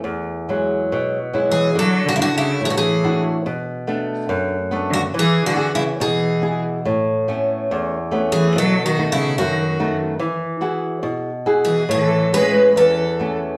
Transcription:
0.04 0.89 E2 medium
0.49 1.18 F#3 soft
0.49 1.18 G#3 soft
0.49 1.18 E4 soft
0.92 1.75 B2 medium
1.33 1.68 F#3 soft
1.33 1.68 G#3 soft
1.33 1.69 E4 medium
1.48 1.75 E3 medium
1.48 1.77 G#4 medium
1.75 2.58 D3 medium
1.75 2.04 F#3 medium
1.75 2.07 A4 medium
2.06 2.12 D3 medium
2.06 2.14 F#4 medium
2.14 2.19 C#3 medium
2.14 2.21 E4 medium
2.19 2.33 D3 medium
2.19 2.87 D4 soft
2.19 2.87 E4 soft
2.19 2.86 F#4 medium
2.19 2.35 F#4 medium
2.35 2.60 C#3 medium
2.35 2.62 E4 medium
2.61 3.43 A2 medium
2.61 2.67 E3 medium
2.65 2.74 D3 medium
2.65 2.70 G#4 medium
2.70 2.76 F#4 medium
2.76 3.22 E3 medium
2.76 3.22 G#4 medium
3.04 3.37 D4 soft
3.04 3.38 E4 soft
3.04 3.38 F#4 medium
3.46 4.28 B2 medium
3.87 4.55 A3 soft
3.87 4.56 B3 soft
3.87 4.56 D4 medium
4.29 5.11 F#2 medium
4.71 5.06 A3 soft
4.71 5.05 B3 soft
4.71 5.06 D4 medium
4.90 5.02 D3 medium
4.90 5.00 F#4 medium
5.14 5.98 E3 medium
5.14 5.42 E3 medium
5.19 5.46 G#4 medium
5.45 5.71 D3 medium
5.45 5.71 F#4 medium
5.56 6.26 B3 soft
5.56 6.26 E4 soft
5.56 6.26 G#4 soft
5.75 5.87 C#3 medium
5.75 5.82 E4 medium
6.00 6.85 B2 medium
6.00 6.63 E3 medium
6.00 6.62 G#4 medium
6.42 6.77 B3 soft
6.42 6.78 E4 soft
6.42 6.78 G#4 soft
6.85 7.69 A2 medium
7.28 7.96 A3 soft
7.28 7.96 B3 soft
7.28 7.97 C#4 soft
7.71 8.53 E2 medium
8.11 8.46 A3 soft
8.11 8.47 B3 soft
8.11 8.47 C#4 medium
8.32 8.56 E3 medium
8.32 8.58 G#4 medium
8.56 9.37 B2 medium
8.56 8.83 F#3 medium
8.56 8.85 A4 medium
8.84 9.10 D#3 medium
8.84 9.12 F#4 medium
8.98 9.64 A3 soft
8.98 9.65 B3 soft
8.98 9.65 D#4 soft
9.12 9.38 C#3 medium
9.12 9.38 E4 medium
9.38 10.19 F#2 medium
9.38 9.98 D#3 medium
9.38 9.97 F#4 medium
9.79 10.13 A3 medium
9.79 10.14 B3 soft
9.79 10.13 D#4 medium
10.19 11.01 E3 medium
10.61 11.29 E4 soft
10.61 11.29 F#4 soft
10.61 11.29 G#4 medium
11.03 11.86 B2 medium
11.46 11.81 E4 soft
11.46 11.81 F#4 soft
11.46 11.81 G#4 medium
11.64 11.89 E3 medium
11.64 11.90 G#4 medium
11.89 12.74 A2 medium
11.89 12.31 E3 medium
11.89 12.02 G#4 medium
12.02 12.33 A4 medium
12.33 13.02 E3 soft
12.33 12.74 G#3 medium
12.33 13.03 B3 soft
12.33 13.03 C#4 soft
12.33 12.77 B4 medium
12.75 13.57 E2 medium
12.75 13.37 E3 medium
12.75 13.38 A4 medium
13.20 13.54 A3 soft
13.20 13.55 B3 soft
13.20 13.55 C#4 soft

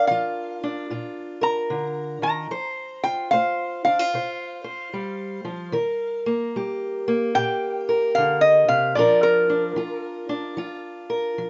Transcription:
0.00 0.62 D4 medium
0.00 0.11 F4 medium
0.00 1.40 A#4 medium
0.07 0.84 F3 medium
0.07 0.86 F5 loud
0.11 0.91 F4 medium
0.63 2.48 D4 medium
0.90 1.65 A#2 medium
0.90 2.48 F4 medium
1.41 2.47 A#4 medium
1.41 2.21 A#5 loud
1.70 2.22 D3 medium
2.22 2.50 D#3 medium
2.22 3.01 A#5 medium
2.51 3.25 F3 medium
2.51 3.31 C5 medium
3.04 3.84 F4 medium
3.04 3.30 G5 medium
3.31 4.07 A3 medium
3.31 4.13 C5 medium
3.31 3.83 F5 loud
3.85 3.99 D4 medium
3.85 6.22 F5 loud
3.99 5.74 F4 soft
4.14 4.88 C3 medium
4.14 4.63 C5 medium
4.64 5.70 C5 medium
4.93 5.44 G3 medium
5.45 5.73 F3 medium
5.72 6.47 D#3 medium
5.72 7.86 A#4 medium
6.26 7.07 A#3 medium
6.56 7.30 G3 medium
6.56 7.35 G4 medium
7.08 8.96 A#3 medium
7.35 8.10 A#2 medium
7.35 8.93 G4 medium
7.35 8.13 G5 loud
7.89 8.93 A#4 medium
8.15 8.68 D3 medium
8.15 8.41 F5 loud
8.41 8.67 D#5 loud
8.68 8.96 C3 medium
8.68 8.94 F5 medium
8.95 9.71 A#2 medium
8.95 9.76 F3 medium
8.95 9.48 D4 medium
8.95 9.77 F4 medium
8.95 11.08 A#4 medium
8.95 9.21 D5 loud
9.23 10.80 A#4 medium
9.50 10.28 D4 medium
9.76 10.51 F3 medium
9.76 10.58 F4 medium
10.29 11.50 D4 medium
10.57 11.32 F3 medium
10.57 11.50 F4 medium
11.10 11.50 A#4 medium
11.38 11.50 F3 medium

